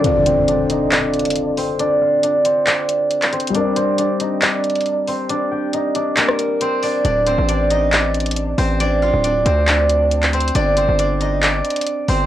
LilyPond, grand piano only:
\new Staff \with { instrumentName = "Grand piano" } { \time 4/4 \key d \phrygian \tempo 4 = 137 <d c' f' d''>1~ | <d c' f' d''>1 | <g g' bes' d''>1~ | <g g' bes' d''>1 |
r1 | r1 | r1 | }